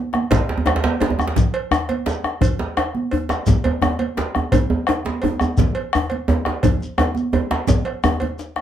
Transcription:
0.13 bombo rim medium
0.13 djembe slap medium
0.13 high conga medium
0.31 bombo low loud
0.31 cowbell medium
0.31 djembe slap loud
0.31 djembe bass medium
0.31 low conga medium
0.31 shekere soft
0.48 djembe slap soft
0.48 djembe slap medium
0.58 djembe tone medium
0.66 bombo rim medium
0.66 cowbell medium
0.66 djembe slap medium
0.66 djembe tone medium
0.76 djembe slap medium
0.84 djembe slap loud
0.84 high conga medium
1.00 bombo rim soft
1.00 cowbell soft
1.00 djembe slap medium
1.00 djembe bass medium
1.10 djembe tone medium
1.19 bombo rim medium
1.19 djembe tone medium
1.19 high conga soft
1.19 djembe tone soft
1.19 shekere soft
1.27 djembe slap medium
1.36 bombo low loud
1.36 djembe slap medium
1.36 low conga medium
1.36 shekere medium
1.54 cowbell medium
1.54 djembe slap soft
1.71 bombo rim loud
1.71 djembe tone medium
1.71 high conga soft
1.71 djembe bass medium
1.71 shekere soft
1.89 cowbell medium
1.89 high conga medium
2.06 djembe slap medium
2.06 high conga soft
2.06 shekere soft
2.24 bombo rim medium
2.24 djembe tone medium
2.41 bombo low medium
2.41 cowbell medium
2.41 djembe bass medium
2.41 low conga medium
2.41 shekere medium
2.59 djembe slap soft
2.59 djembe slap medium
2.77 bombo rim medium
2.77 cowbell medium
2.77 djembe slap medium
2.77 djembe tone medium
2.95 high conga medium
3.11 bombo rim soft
3.11 cowbell medium
3.11 djembe bass medium
3.29 bombo rim medium
3.29 djembe slap medium
3.29 high conga soft
3.29 djembe tone medium
3.29 shekere soft
3.46 bombo low loud
3.46 djembe slap medium
3.46 djembe tone medium
3.46 low conga medium
3.46 shekere medium
3.64 cowbell medium
3.64 djembe tone medium
3.82 bombo rim medium
3.82 djembe tone medium
3.82 high conga soft
3.82 djembe bass medium
3.82 shekere soft
3.99 cowbell soft
3.99 high conga medium
4.17 djembe slap medium
4.17 high conga soft
4.17 shekere soft
4.35 bombo rim medium
4.35 djembe tone medium
4.52 bombo low loud
4.52 cowbell medium
4.52 djembe tone medium
4.52 low conga medium
4.52 djembe bass medium
4.52 shekere soft
4.70 djembe slap soft
4.70 djembe tone medium
4.87 bombo rim medium
4.87 cowbell soft
4.87 djembe slap medium
4.87 djembe tone medium
5.05 djembe slap medium
5.05 high conga medium
5.22 bombo rim soft
5.22 cowbell soft
5.22 djembe tone medium
5.22 djembe bass medium
5.40 bombo rim medium
5.40 djembe tone medium
5.40 high conga soft
5.40 shekere soft
5.42 djembe tone medium
5.57 bombo low loud
5.57 djembe slap medium
5.57 djembe tone medium
5.57 low conga medium
5.57 shekere medium
5.75 cowbell soft
5.75 djembe slap soft
5.93 bombo rim loud
5.93 high conga soft
5.93 djembe tone medium
5.93 djembe bass medium
5.93 shekere soft
6.10 cowbell soft
6.10 high conga medium
6.28 djembe slap medium
6.28 djembe tone loud
6.28 high conga soft
6.28 shekere soft
6.45 bombo rim medium
6.45 djembe slap medium
6.45 djembe tone soft
6.63 bombo low loud
6.63 cowbell soft
6.63 djembe tone medium
6.63 low conga medium
6.63 djembe bass medium
6.63 shekere soft
6.80 high conga soft
6.80 shekere soft
6.98 bombo rim medium
6.98 cowbell soft
6.98 djembe slap medium
6.98 djembe tone medium
6.98 shekere soft
7.15 djembe slap soft
7.15 high conga medium
7.15 shekere soft
7.32 bombo rim soft
7.32 cowbell soft
7.32 djembe slap soft
7.32 high conga soft
7.32 djembe tone loud
7.32 djembe bass medium
7.51 bombo rim medium
7.51 djembe slap medium
7.51 djembe tone medium
7.67 bombo rim soft
7.67 bombo low loud
7.67 djembe slap medium
7.67 djembe tone medium
7.67 low conga medium
7.67 shekere medium
7.85 bombo rim soft
7.85 cowbell soft
8.03 bombo rim loud
8.03 djembe tone loud
8.03 djembe tone medium
8.03 djembe bass medium
8.03 shekere soft
8.20 cowbell soft
8.20 high conga medium
8.20 djembe bass soft
8.39 djembe slap medium
8.39 shekere soft
8.56 bombo rim medium
8.56 djembe slap medium
8.56 high conga soft

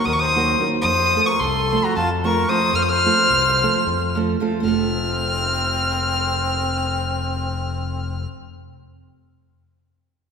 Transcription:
0.05 0.53 D#2 loud
0.05 0.14 A#4 medium
0.05 0.14 D#6 loud
0.13 0.22 A#4 medium
0.13 0.21 C#6 medium
0.19 0.65 C5 medium
0.19 0.64 D#6 loud
0.35 0.55 F#3 medium
0.35 0.55 A#3 medium
0.35 0.55 D#4 medium
0.35 0.56 F#4 medium
0.35 0.56 A#4 medium
0.59 0.79 F#3 medium
0.59 0.79 A#3 medium
0.59 0.80 D#4 medium
0.59 0.80 F#4 medium
0.59 0.80 A#4 medium
0.82 1.18 F2 medium
0.82 1.30 C5 loud
0.82 1.27 D#6 loud
1.14 1.35 F3 medium
1.14 1.36 A3 medium
1.14 1.36 C4 medium
1.14 1.36 F4 medium
1.14 1.36 A4 medium
1.26 1.42 A#4 medium
1.26 1.41 C#6 loud
1.39 1.74 C2 loud
1.39 1.86 A4 loud
1.39 1.86 C6 loud
1.71 1.92 F3 medium
1.71 1.92 A3 medium
1.71 1.92 C4 medium
1.71 1.92 F4 medium
1.71 1.93 A4 medium
1.84 1.97 F#4 medium
1.84 1.95 A#5 medium
1.96 2.43 F2 loud
1.96 2.10 F4 medium
1.96 2.09 A5 loud
2.24 2.44 F3 medium
2.24 2.44 A3 medium
2.24 2.45 C4 medium
2.24 2.45 F4 medium
2.24 2.45 A4 medium
2.24 2.50 A#4 loud
2.24 2.50 C#6 loud
2.49 2.69 F3 medium
2.49 2.69 A3 medium
2.49 2.70 C4 medium
2.49 2.70 F4 medium
2.49 2.70 A4 medium
2.49 2.76 C5 medium
2.49 2.77 D#6 loud
2.74 3.07 F2 medium
2.74 2.84 C5 loud
2.74 2.84 F6 loud
2.82 2.90 C5 medium
2.82 2.90 D#6 medium
2.89 4.16 C5 loud
2.89 4.15 F6 loud
3.04 3.25 F3 medium
3.04 3.26 A3 medium
3.04 3.26 C4 medium
3.04 3.26 F4 medium
3.04 3.26 A4 medium
3.30 3.64 C2 medium
3.62 3.82 F3 medium
3.62 3.83 A3 medium
3.62 3.83 C4 medium
3.62 3.83 F4 medium
3.62 3.84 A4 medium
3.87 4.33 F2 loud
4.15 4.35 F3 medium
4.15 4.35 A3 medium
4.15 4.36 C4 medium
4.15 4.36 F4 medium
4.15 4.36 A4 medium
4.40 4.60 F3 medium
4.40 4.59 A3 medium
4.40 4.60 C4 medium
4.40 4.61 F4 medium
4.40 4.61 A4 medium
4.60 8.20 A3 medium
4.60 8.23 C4 medium
4.60 8.24 C4 medium
4.64 8.25 F1 loud
4.64 8.25 F4 medium
4.64 8.28 A4 loud
4.64 8.24 F6 loud

